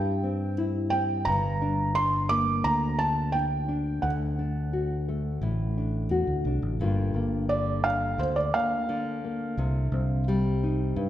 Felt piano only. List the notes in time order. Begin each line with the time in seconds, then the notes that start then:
Already playing: G5
0.90 G5
1.25 A#5
1.95 C6
2.29 D6
2.64 A#5
2.99 A5
3.32 G5
4.02 F#5
7.49 D5
7.84 F5
8.19 C5
8.36 D5
8.54 F5